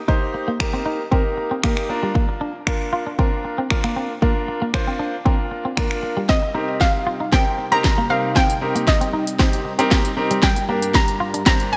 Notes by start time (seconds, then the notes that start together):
0.08 A#3 D#4 G4 C5, kick
0.34 muted clean electric guitar stroke
0.48 A#3
0.60 A#3 D#4 G4 A#4, finger snap, muted clean electric guitar stroke, kick
0.73 C4
0.86 D#4
1.11 A#3 C4 D#4 G4 A#4, kick
1.37 muted clean electric guitar stroke
1.51 C4
1.63 A#3 D#4 G4 A#4, finger snap, kick
1.77 finger snap
1.89 A#3 D4 F4 A#4, muted clean electric guitar stroke
2.03 G3
2.15 A#3, kick
2.29 muted clean electric guitar stroke
2.41 D4
2.67 A#3 D4 F4 A#4, finger snap, muted clean electric guitar stroke, kick
2.93 F4
3.07 D4
3.18 A#3 C4 D4 F4 A#4, kick
3.45 muted clean electric guitar stroke
3.58 C4
3.70 A#3 D4 F4 A#4, finger snap, muted clean electric guitar stroke, kick
3.84 A#3, finger snap
3.96 C4
4.22 A#3 D4 F4 A#4, kick
4.48 muted clean electric guitar stroke
4.62 A#3
4.74 A#3 D4 F4 C5, finger snap, muted clean electric guitar stroke, kick
4.87 C4
4.99 D4
5.25 A#3 C4 D4 F4 A#4, kick
5.51 muted clean electric guitar stroke
5.65 C4
5.77 A#3 D4 F4 A#4, finger snap, kick
5.91 finger snap
6.03 muted clean electric guitar stroke
6.17 G3
6.29 C3 G3 C4 D#4 A#4 D#5, kick, snare
6.42 muted clean electric guitar stroke
6.55 C4 D#4 G4 A#4
6.81 F5, muted clean electric guitar stroke, kick, snare
7.07 F4
7.20 D#4
7.32 C4 D#4 G4 A#4 G5, kick, snare
7.58 muted clean electric guitar stroke
7.72 C4 D#4 G4 A#4 A#5
7.84 muted clean electric guitar stroke, kick, snare
7.98 A#3
8.10 C4 D#4 G4 A#4 F5
8.36 C4 G5, kick, snare
8.50 closed hi-hat
8.61 C4 D#4 G4 A#4, muted clean electric guitar stroke
8.75 A#3, closed hi-hat
8.87 D#5, muted clean electric guitar stroke, kick, snare
9.01 C4, closed hi-hat
9.13 D#4
9.27 closed hi-hat
9.39 C4 D#4 G4 C5, kick, snare
9.53 closed hi-hat
9.65 muted clean electric guitar stroke
9.79 C4 D#4 G4 A#4, closed hi-hat
9.91 A#3, kick, snare
10.05 closed hi-hat
10.17 C4 D#4 G4 A#4, muted clean electric guitar stroke
10.31 G3, closed hi-hat
10.43 G2 G3 D4 G5, kick, snare
10.56 muted clean electric guitar stroke, closed hi-hat
10.69 A#3 D4 G4 A#4
10.82 closed hi-hat
10.94 A#5, muted clean electric guitar stroke, kick, snare
11.08 closed hi-hat
11.20 F4
11.34 D4, closed hi-hat
11.46 A#3 C4 D4 G4 C5 A#5, kick, snare
11.60 closed hi-hat
11.72 G#5, muted clean electric guitar stroke